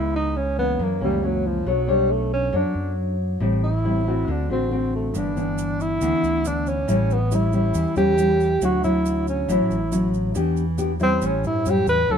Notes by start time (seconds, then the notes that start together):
Already playing: C#2 C#3 G#3 B3 E4
0.16 D#4
0.37 C#4
0.57 E3 A#3 B3 C#4
0.79 F#2
0.83 A#3
1.00 C#2 E3 G3 A#3 C#4
1.22 E3 F#3 A#3 C#4
1.47 F3
1.66 B1 F#3 B3 D4 A4 C#5
1.88 G3 D4 A4 C#5
2.11 A3
2.33 C#4
2.53 F#2 F#3 D4 A4 C#5
2.75 F#2
3.40 A1 A2 G3 C4 E4
3.64 E4
3.84 G3 C4 E4
4.07 A3 C4 F#4
4.28 D2 D3 D4
4.49 A1 A3 C4 F#4
4.70 A3 C4 F#4
4.95 A3
5.14 G1 G2 E3 B3 D4, shaker
5.18 D4
5.36 E3 B3 D4, shaker
5.58 shaker
5.80 E4, shaker
6.01 D2 D3 E3 B3 D4, shaker
6.23 D2, shaker
6.45 E3 B3 D4, shaker
6.66 C#4, shaker
6.88 A1 A2 G3 C#4 E4, shaker
7.11 B3, shaker
7.31 G3 C#4 E4, shaker
7.35 E4
7.53 G3 C#4 E4, shaker
7.74 E2 E3, shaker
7.96 E2 G3 C#4 E4 G4, shaker
8.18 G3 C#4 E4, shaker
8.40 shaker
8.62 D2 D3 F#3 C#4 E4 F#4, shaker
8.83 F#3 C#4 E4, shaker
9.06 shaker
9.27 C#4, shaker
9.48 A1 A2 F#3 C#4 E4, shaker
9.70 A1, shaker
9.91 F#3 C#4 E4, shaker
10.14 shaker
10.35 E2 E3 B3 D4 G4, shaker
10.57 shaker
10.78 B3 D4 G4, shaker
11.00 G3 C4 C#4 E4, shaker
11.22 A1 A2, shaker
11.27 C#4
11.44 G2 E4, shaker
11.66 F#2 G3 C#4 E4, shaker
11.70 G4
11.87 E2 B4, shaker
12.09 D2 D3 F#3 C#4 E4 A4